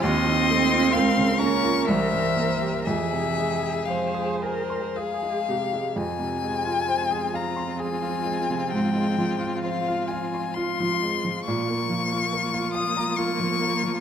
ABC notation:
X:1
M:3/4
L:1/16
Q:1/4=66
K:Fm
V:1 name="Violin"
c'6 d'2 =e4 | =e4 f2 c2 f4 | a6 b2 a4 | g4 f2 a2 c'4 |
d'6 e'2 d'4 |]
V:2 name="Violin"
e4 f2 B2 c4 | A8- A2 z2 | F12- | F12 |
F12 |]
V:3 name="Viola"
F4 B8 | A4 c2 B2 A2 G2 | C12- | C12 |
B,12 |]
V:4 name="Grand piano"
E,, E, =A, F D,, D, B, F C,, G,, B, G | F,, C, A, A c A a c' A A, C, A, | F,, C, A, F c A f c' A F A, C, | A,, A, F, F c F f c' F F, A, F, |
B,, B, F, F B F f b F F, B, F, |]
V:5 name="Cello" clef=bass
C6 D2 =E,4 | =E,4 F,4 z4 | F,12- | F,12 |
F,12 |]